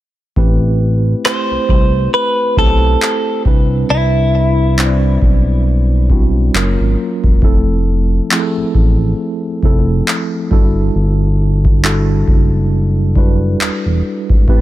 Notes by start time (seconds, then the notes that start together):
0.36 A1 A3 C4 E4 G4 B4, kick
1.25 A3 C4 E4 G4 C5, clap
1.51 C2
1.69 C2, kick
2.14 B4
2.57 B1 A3 C4 E4 G4 A4 C5, kick
3.02 clap
3.45 C2 G3 C4 D4 E4 B4, kick
3.90 C2 E4
4.77 G3 C4 D4 E4 C5, clap
4.86 D5
5.22 B1, kick
6.10 G3 C4 D4 E4 F#4, kick
6.54 F#1 F#3 A#3 C#4 F4 A#4, clap
6.80 G#1
7.24 E1, kick
7.42 F1 F3 A3 C4 E4 A4, kick
8.31 F3 A3 C4 E4 G#4, clap
8.39 A4
8.57 A1
8.75 A1, kick
9.63 F1 F3 A3 C4 E4 A4, kick
10.08 clap
10.51 G1 G3 D4 E4 F#4 A4, kick
10.96 G1
11.65 kick
11.83 G3 D4 E4 F#4 A4, clap
12.28 F#1, kick
13.16 G3 D4 E4 F#4 B4, kick
13.60 E1, clap
13.85 E1
14.30 G#1, kick
14.48 A1 A3 C4 E4 G4 A4 B4 G5 A5 B5, kick